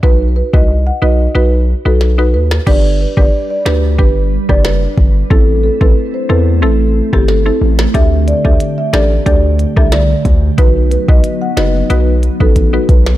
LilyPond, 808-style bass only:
\new Staff \with { instrumentName = "808-style bass" } { \clef bass \time 4/4 \key g \major \tempo 4 = 91 b,,8. c,8. b,,8 b,,8. b,,8. dis,8 | g,,8. g,,16 r8 d,8 g,,8. fis,,8. g,,8 | a,,8. a,,16 r8 e,8 a,,8. g,,8. a,,8 | d,8. d,16 r8 a,,8 d,8. c,8. d,8 |
b,,8. b,,16 r8 fis,,8 b,,8. a,,8. b,,8 | }